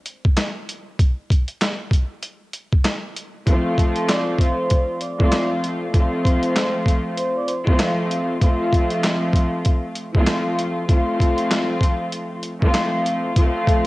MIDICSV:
0, 0, Header, 1, 4, 480
1, 0, Start_track
1, 0, Key_signature, -1, "major"
1, 0, Tempo, 618557
1, 770, Time_signature, 4, 2, 24, 8
1, 10761, End_track
2, 0, Start_track
2, 0, Title_t, "Vibraphone"
2, 0, Program_c, 0, 11
2, 2933, Note_on_c, 0, 69, 66
2, 2938, Note_on_c, 0, 81, 57
2, 3147, Note_off_c, 0, 69, 0
2, 3150, Note_off_c, 0, 81, 0
2, 3168, Note_on_c, 0, 74, 79
2, 3174, Note_on_c, 0, 86, 57
2, 3385, Note_off_c, 0, 74, 0
2, 3388, Note_off_c, 0, 86, 0
2, 3415, Note_on_c, 0, 72, 75
2, 3421, Note_on_c, 0, 84, 60
2, 3863, Note_off_c, 0, 72, 0
2, 3867, Note_off_c, 0, 84, 0
2, 3891, Note_on_c, 0, 74, 73
2, 3897, Note_on_c, 0, 86, 59
2, 4250, Note_off_c, 0, 74, 0
2, 4254, Note_off_c, 0, 86, 0
2, 4840, Note_on_c, 0, 72, 84
2, 4846, Note_on_c, 0, 84, 52
2, 5204, Note_off_c, 0, 72, 0
2, 5208, Note_off_c, 0, 84, 0
2, 5563, Note_on_c, 0, 72, 86
2, 5569, Note_on_c, 0, 84, 65
2, 5695, Note_off_c, 0, 72, 0
2, 5698, Note_off_c, 0, 84, 0
2, 5715, Note_on_c, 0, 74, 69
2, 5722, Note_on_c, 0, 86, 55
2, 5797, Note_on_c, 0, 72, 73
2, 5801, Note_off_c, 0, 74, 0
2, 5803, Note_on_c, 0, 84, 61
2, 5805, Note_off_c, 0, 86, 0
2, 6019, Note_off_c, 0, 72, 0
2, 6022, Note_off_c, 0, 84, 0
2, 10611, Note_on_c, 0, 57, 68
2, 10617, Note_on_c, 0, 69, 59
2, 10761, Note_off_c, 0, 57, 0
2, 10761, Note_off_c, 0, 69, 0
2, 10761, End_track
3, 0, Start_track
3, 0, Title_t, "String section"
3, 0, Program_c, 1, 48
3, 2693, Note_on_c, 1, 53, 100
3, 2696, Note_on_c, 1, 57, 92
3, 2699, Note_on_c, 1, 60, 93
3, 2701, Note_on_c, 1, 65, 104
3, 3908, Note_off_c, 1, 53, 0
3, 3910, Note_off_c, 1, 57, 0
3, 3911, Note_off_c, 1, 60, 0
3, 3912, Note_off_c, 1, 65, 0
3, 4035, Note_on_c, 1, 53, 89
3, 4037, Note_on_c, 1, 57, 85
3, 4040, Note_on_c, 1, 60, 85
3, 4042, Note_on_c, 1, 65, 105
3, 4572, Note_off_c, 1, 53, 0
3, 4573, Note_off_c, 1, 57, 0
3, 4575, Note_off_c, 1, 60, 0
3, 4576, Note_off_c, 1, 65, 0
3, 4604, Note_on_c, 1, 53, 96
3, 4608, Note_on_c, 1, 57, 84
3, 4610, Note_on_c, 1, 60, 93
3, 4613, Note_on_c, 1, 65, 104
3, 5824, Note_off_c, 1, 53, 0
3, 5826, Note_off_c, 1, 57, 0
3, 5827, Note_off_c, 1, 60, 0
3, 5829, Note_off_c, 1, 65, 0
3, 5954, Note_on_c, 1, 53, 97
3, 5957, Note_on_c, 1, 57, 88
3, 5960, Note_on_c, 1, 60, 95
3, 5962, Note_on_c, 1, 65, 108
3, 6491, Note_off_c, 1, 53, 0
3, 6493, Note_off_c, 1, 57, 0
3, 6494, Note_off_c, 1, 60, 0
3, 6496, Note_off_c, 1, 65, 0
3, 6533, Note_on_c, 1, 53, 100
3, 6536, Note_on_c, 1, 57, 93
3, 6538, Note_on_c, 1, 60, 88
3, 6541, Note_on_c, 1, 65, 105
3, 7748, Note_off_c, 1, 53, 0
3, 7750, Note_off_c, 1, 57, 0
3, 7751, Note_off_c, 1, 60, 0
3, 7753, Note_off_c, 1, 65, 0
3, 7874, Note_on_c, 1, 53, 93
3, 7877, Note_on_c, 1, 57, 88
3, 7880, Note_on_c, 1, 60, 86
3, 7883, Note_on_c, 1, 65, 109
3, 8412, Note_off_c, 1, 53, 0
3, 8413, Note_off_c, 1, 57, 0
3, 8414, Note_off_c, 1, 60, 0
3, 8416, Note_off_c, 1, 65, 0
3, 8444, Note_on_c, 1, 53, 91
3, 8448, Note_on_c, 1, 57, 85
3, 8450, Note_on_c, 1, 60, 96
3, 8453, Note_on_c, 1, 65, 110
3, 9664, Note_off_c, 1, 53, 0
3, 9666, Note_off_c, 1, 57, 0
3, 9667, Note_off_c, 1, 60, 0
3, 9668, Note_off_c, 1, 65, 0
3, 9795, Note_on_c, 1, 53, 98
3, 9798, Note_on_c, 1, 57, 86
3, 9801, Note_on_c, 1, 60, 93
3, 9803, Note_on_c, 1, 65, 110
3, 10332, Note_off_c, 1, 53, 0
3, 10333, Note_off_c, 1, 57, 0
3, 10335, Note_off_c, 1, 60, 0
3, 10336, Note_off_c, 1, 65, 0
3, 10374, Note_on_c, 1, 53, 102
3, 10376, Note_on_c, 1, 57, 100
3, 10378, Note_on_c, 1, 60, 94
3, 10381, Note_on_c, 1, 65, 112
3, 10761, Note_off_c, 1, 53, 0
3, 10761, Note_off_c, 1, 57, 0
3, 10761, Note_off_c, 1, 60, 0
3, 10761, Note_off_c, 1, 65, 0
3, 10761, End_track
4, 0, Start_track
4, 0, Title_t, "Drums"
4, 45, Note_on_c, 9, 42, 65
4, 122, Note_off_c, 9, 42, 0
4, 194, Note_on_c, 9, 36, 95
4, 271, Note_off_c, 9, 36, 0
4, 285, Note_on_c, 9, 42, 85
4, 291, Note_on_c, 9, 38, 112
4, 291, Note_on_c, 9, 39, 94
4, 362, Note_off_c, 9, 42, 0
4, 368, Note_off_c, 9, 39, 0
4, 369, Note_off_c, 9, 38, 0
4, 536, Note_on_c, 9, 42, 77
4, 613, Note_off_c, 9, 42, 0
4, 770, Note_on_c, 9, 36, 122
4, 772, Note_on_c, 9, 42, 86
4, 848, Note_off_c, 9, 36, 0
4, 850, Note_off_c, 9, 42, 0
4, 1012, Note_on_c, 9, 36, 97
4, 1023, Note_on_c, 9, 42, 75
4, 1089, Note_off_c, 9, 36, 0
4, 1100, Note_off_c, 9, 42, 0
4, 1148, Note_on_c, 9, 42, 56
4, 1226, Note_off_c, 9, 42, 0
4, 1254, Note_on_c, 9, 42, 96
4, 1255, Note_on_c, 9, 38, 116
4, 1255, Note_on_c, 9, 39, 90
4, 1332, Note_off_c, 9, 39, 0
4, 1332, Note_off_c, 9, 42, 0
4, 1333, Note_off_c, 9, 38, 0
4, 1482, Note_on_c, 9, 36, 100
4, 1500, Note_on_c, 9, 42, 84
4, 1560, Note_off_c, 9, 36, 0
4, 1578, Note_off_c, 9, 42, 0
4, 1727, Note_on_c, 9, 42, 89
4, 1805, Note_off_c, 9, 42, 0
4, 1965, Note_on_c, 9, 42, 70
4, 2043, Note_off_c, 9, 42, 0
4, 2114, Note_on_c, 9, 36, 94
4, 2192, Note_off_c, 9, 36, 0
4, 2206, Note_on_c, 9, 42, 86
4, 2212, Note_on_c, 9, 38, 114
4, 2212, Note_on_c, 9, 39, 94
4, 2283, Note_off_c, 9, 42, 0
4, 2289, Note_off_c, 9, 39, 0
4, 2290, Note_off_c, 9, 38, 0
4, 2456, Note_on_c, 9, 42, 74
4, 2533, Note_off_c, 9, 42, 0
4, 2690, Note_on_c, 9, 36, 111
4, 2692, Note_on_c, 9, 42, 80
4, 2768, Note_off_c, 9, 36, 0
4, 2770, Note_off_c, 9, 42, 0
4, 2932, Note_on_c, 9, 36, 89
4, 2943, Note_on_c, 9, 42, 68
4, 3010, Note_off_c, 9, 36, 0
4, 3020, Note_off_c, 9, 42, 0
4, 3070, Note_on_c, 9, 42, 50
4, 3148, Note_off_c, 9, 42, 0
4, 3174, Note_on_c, 9, 42, 90
4, 3175, Note_on_c, 9, 38, 104
4, 3175, Note_on_c, 9, 39, 82
4, 3252, Note_off_c, 9, 39, 0
4, 3252, Note_off_c, 9, 42, 0
4, 3253, Note_off_c, 9, 38, 0
4, 3403, Note_on_c, 9, 36, 90
4, 3421, Note_on_c, 9, 42, 75
4, 3480, Note_off_c, 9, 36, 0
4, 3499, Note_off_c, 9, 42, 0
4, 3648, Note_on_c, 9, 42, 83
4, 3655, Note_on_c, 9, 36, 84
4, 3726, Note_off_c, 9, 42, 0
4, 3733, Note_off_c, 9, 36, 0
4, 3886, Note_on_c, 9, 42, 63
4, 3963, Note_off_c, 9, 42, 0
4, 4034, Note_on_c, 9, 36, 90
4, 4112, Note_off_c, 9, 36, 0
4, 4125, Note_on_c, 9, 42, 82
4, 4131, Note_on_c, 9, 39, 85
4, 4132, Note_on_c, 9, 38, 105
4, 4203, Note_off_c, 9, 42, 0
4, 4209, Note_off_c, 9, 38, 0
4, 4209, Note_off_c, 9, 39, 0
4, 4375, Note_on_c, 9, 42, 70
4, 4453, Note_off_c, 9, 42, 0
4, 4610, Note_on_c, 9, 36, 114
4, 4611, Note_on_c, 9, 42, 79
4, 4687, Note_off_c, 9, 36, 0
4, 4689, Note_off_c, 9, 42, 0
4, 4852, Note_on_c, 9, 36, 87
4, 4863, Note_on_c, 9, 42, 65
4, 4929, Note_off_c, 9, 36, 0
4, 4941, Note_off_c, 9, 42, 0
4, 4989, Note_on_c, 9, 42, 52
4, 5066, Note_off_c, 9, 42, 0
4, 5094, Note_on_c, 9, 39, 86
4, 5094, Note_on_c, 9, 42, 88
4, 5095, Note_on_c, 9, 38, 108
4, 5171, Note_off_c, 9, 42, 0
4, 5172, Note_off_c, 9, 38, 0
4, 5172, Note_off_c, 9, 39, 0
4, 5322, Note_on_c, 9, 36, 94
4, 5341, Note_on_c, 9, 42, 77
4, 5400, Note_off_c, 9, 36, 0
4, 5419, Note_off_c, 9, 42, 0
4, 5568, Note_on_c, 9, 42, 81
4, 5645, Note_off_c, 9, 42, 0
4, 5805, Note_on_c, 9, 42, 63
4, 5883, Note_off_c, 9, 42, 0
4, 5954, Note_on_c, 9, 36, 90
4, 6031, Note_off_c, 9, 36, 0
4, 6044, Note_on_c, 9, 42, 84
4, 6050, Note_on_c, 9, 39, 85
4, 6051, Note_on_c, 9, 38, 106
4, 6122, Note_off_c, 9, 42, 0
4, 6128, Note_off_c, 9, 38, 0
4, 6128, Note_off_c, 9, 39, 0
4, 6294, Note_on_c, 9, 42, 70
4, 6372, Note_off_c, 9, 42, 0
4, 6530, Note_on_c, 9, 36, 116
4, 6531, Note_on_c, 9, 42, 80
4, 6607, Note_off_c, 9, 36, 0
4, 6609, Note_off_c, 9, 42, 0
4, 6772, Note_on_c, 9, 36, 87
4, 6783, Note_on_c, 9, 42, 68
4, 6850, Note_off_c, 9, 36, 0
4, 6861, Note_off_c, 9, 42, 0
4, 6910, Note_on_c, 9, 42, 53
4, 6987, Note_off_c, 9, 42, 0
4, 7014, Note_on_c, 9, 42, 92
4, 7015, Note_on_c, 9, 39, 85
4, 7016, Note_on_c, 9, 38, 104
4, 7092, Note_off_c, 9, 39, 0
4, 7092, Note_off_c, 9, 42, 0
4, 7093, Note_off_c, 9, 38, 0
4, 7242, Note_on_c, 9, 36, 90
4, 7261, Note_on_c, 9, 42, 79
4, 7320, Note_off_c, 9, 36, 0
4, 7338, Note_off_c, 9, 42, 0
4, 7487, Note_on_c, 9, 42, 82
4, 7495, Note_on_c, 9, 36, 89
4, 7565, Note_off_c, 9, 42, 0
4, 7572, Note_off_c, 9, 36, 0
4, 7724, Note_on_c, 9, 42, 64
4, 7802, Note_off_c, 9, 42, 0
4, 7874, Note_on_c, 9, 36, 93
4, 7951, Note_off_c, 9, 36, 0
4, 7964, Note_on_c, 9, 42, 84
4, 7970, Note_on_c, 9, 39, 88
4, 7971, Note_on_c, 9, 38, 108
4, 8042, Note_off_c, 9, 42, 0
4, 8048, Note_off_c, 9, 38, 0
4, 8048, Note_off_c, 9, 39, 0
4, 8215, Note_on_c, 9, 42, 71
4, 8293, Note_off_c, 9, 42, 0
4, 8450, Note_on_c, 9, 36, 114
4, 8452, Note_on_c, 9, 42, 81
4, 8528, Note_off_c, 9, 36, 0
4, 8529, Note_off_c, 9, 42, 0
4, 8692, Note_on_c, 9, 36, 88
4, 8703, Note_on_c, 9, 42, 68
4, 8769, Note_off_c, 9, 36, 0
4, 8780, Note_off_c, 9, 42, 0
4, 8829, Note_on_c, 9, 42, 52
4, 8907, Note_off_c, 9, 42, 0
4, 8933, Note_on_c, 9, 42, 90
4, 8934, Note_on_c, 9, 38, 105
4, 8934, Note_on_c, 9, 39, 86
4, 9011, Note_off_c, 9, 39, 0
4, 9011, Note_off_c, 9, 42, 0
4, 9012, Note_off_c, 9, 38, 0
4, 9162, Note_on_c, 9, 36, 88
4, 9180, Note_on_c, 9, 42, 80
4, 9239, Note_off_c, 9, 36, 0
4, 9258, Note_off_c, 9, 42, 0
4, 9407, Note_on_c, 9, 42, 83
4, 9485, Note_off_c, 9, 42, 0
4, 9644, Note_on_c, 9, 42, 63
4, 9722, Note_off_c, 9, 42, 0
4, 9793, Note_on_c, 9, 36, 87
4, 9871, Note_off_c, 9, 36, 0
4, 9884, Note_on_c, 9, 42, 85
4, 9890, Note_on_c, 9, 38, 104
4, 9890, Note_on_c, 9, 39, 88
4, 9961, Note_off_c, 9, 42, 0
4, 9967, Note_off_c, 9, 39, 0
4, 9968, Note_off_c, 9, 38, 0
4, 10135, Note_on_c, 9, 42, 71
4, 10212, Note_off_c, 9, 42, 0
4, 10369, Note_on_c, 9, 36, 124
4, 10370, Note_on_c, 9, 42, 86
4, 10447, Note_off_c, 9, 36, 0
4, 10447, Note_off_c, 9, 42, 0
4, 10611, Note_on_c, 9, 36, 96
4, 10621, Note_on_c, 9, 42, 70
4, 10688, Note_off_c, 9, 36, 0
4, 10698, Note_off_c, 9, 42, 0
4, 10761, End_track
0, 0, End_of_file